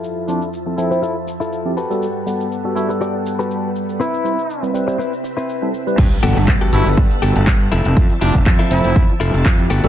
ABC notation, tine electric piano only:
X:1
M:4/4
L:1/16
Q:"Swing 16ths" 1/4=121
K:G
V:1 name="Tine electric piano"
z2 [=F,CEc] z2 [F,CEA] [F,CEA] [F,CEc] z4 z [F,CEG] z [G,B,^FA] | z2 [G,B,Af]3 [G,B,FA] [G,B,FA] [G,B,Af]8- [G,B,Af] | z2 [G,CEc] z2 [G,CEB] [G,CEB] [G,CEc] z4 z [G,CEA] z [G,CEB] | z2 [G,B,Af]3 [G,B,FA] [G,B,FA] [G,B,Af]6- [G,B,Af] z2 |
z2 [=F,CEc] z2 [F,CEA] [F,CEA] [F,CEc] z4 z [F,CEG] z [G,B,^FA] |]